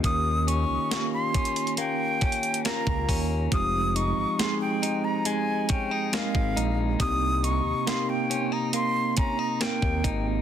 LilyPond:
<<
  \new Staff \with { instrumentName = "Flute" } { \time 4/4 \key f \minor \tempo 4 = 69 ees'''8 des'''8. c'''8. g''4 bes''8. r16 | ees'''8 des'''8 c'''16 g''8 bes''16 aes''8 g''8 f''8. r16 | ees'''8 des'''8 c'''16 g''8 bes''16 c'''8 bes''8 g''8. r16 | }
  \new Staff \with { instrumentName = "Tine electric piano" } { \time 4/4 \key f \minor <bes des' f' g'>4 <bes des' f' g'>2 <bes des' f' bes'>4 | <aes c' ees' g'>4 <aes c' ees' aes'>2 <aes c' ees' bes'>4 | <c' ees' g'>4 <bes c' ees' g'>2 <bes c' ees' bes'>4 | }
  \new Staff \with { instrumentName = "Clean electric guitar" } { \time 4/4 \key f \minor ees8 des'8 bes8 des'8 bes8 des'8 bes8 des'8 | f8 ees'8 aes8 ees'8 aes8 des'16 ees'16 aes8 ees'8 | c8 ees'8 bes8 des'16 ees'16 bes8 des'16 ees'16 bes8 ees'8 | }
  \new Staff \with { instrumentName = "Analog synth bass" } { \clef bass \time 4/4 \key f \minor ees,8. des,16 r2 r16 des,16 ees,8 | f,,8. aes,,16 r2 r16 aes,,16 bes,,8 | c,8. ees,16 r2 r16 ees,16 aes,,8 | }
  \new DrumStaff \with { instrumentName = "Drums" } \drummode { \time 4/4 <hh bd>8 hh8 <hh sn>8 <hh bd>32 hh32 hh32 hh32 hh8 <hh bd>32 hh32 hh32 hh32 <hh sn>16 bd16 <hho bd>8 | <hh bd>8 hh8 <hh sn>8 hh8 hh8 <hh bd>8 <hh sn>16 bd16 hh8 | <hh bd>8 hh8 <hh sn>8 hh8 hh8 <hh bd>8 <hh sn>16 bd16 <hh bd>8 | }
>>